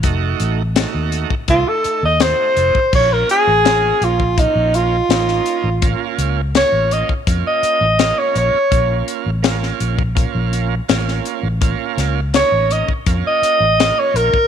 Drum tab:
CC |----------------|x---------------|----------------|----------------|
HH |x-x-x-x-x-x-x-x-|--x-x-x-x-x-x-x-|x-x-x-x-x-x-x-x-|x-x-x-x-x-x-x-x-|
SD |----o-------o---|----o-------oo--|----o-------o---|----oo------oo--|
BD |o------oo------o|o------oo-------|o------oo-------|o------oo-------|

CC |----------------|
HH |x-x-x-x-x-x-x-x-|
SD |--o-o-------o---|
BD |o------oo------o|